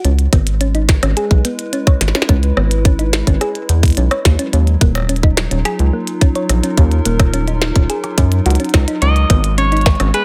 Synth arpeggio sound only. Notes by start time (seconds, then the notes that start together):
0.05 C#4
0.33 B3
0.61 C#4
0.75 D#4
1.03 C#4
1.17 G#4
1.45 B3
1.73 C#4
1.87 C#5
2.15 C#4
2.29 C#4
2.57 B3
2.85 C#4
2.99 D#4
3.27 C#4
3.41 G#4
3.69 B3
3.97 C#4
4.11 C#5
4.39 C#4
4.53 C#4
4.81 A#3
5.09 C#4
5.23 D#4
5.51 C#4
5.65 G#4
5.93 A#3
6.21 C#4
6.36 C#5
6.63 C#4
6.77 C#4
7.06 A#3
7.34 C#4
7.48 D#4
7.76 C#4
7.90 G#4
8.18 C#4
8.46 F#4
8.60 C#4
8.88 D#4
9.02 C#4
9.30 B3
9.58 C#4
9.72 D#4
10.00 C#4
10.14 G#4